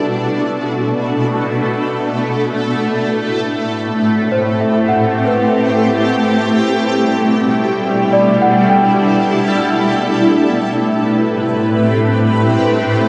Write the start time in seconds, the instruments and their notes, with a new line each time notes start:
Already playing: ambient pad B2 A3 D4 E4 F#4 A4, celesta A4 B4 D5 E5
2.41 ambient pad A2, synth drone A3 E4
3.46 ambient pad C4
3.79 ambient pad G4
4.32 celesta C5
4.60 celesta E5
4.88 celesta F#5
5.26 celesta B4
6.21 ambient pad B2
6.33 ambient pad G3
6.74 ambient pad D4
7.50 ambient pad A4
7.71 ambient pad E4
8.12 celesta D5
8.42 celesta F#5
8.70 celesta G5
10.02 ambient pad A2, synth drone A3 E4
10.13 ambient pad A3
10.23 ambient pad B4
10.58 ambient pad C4
10.89 ambient pad G4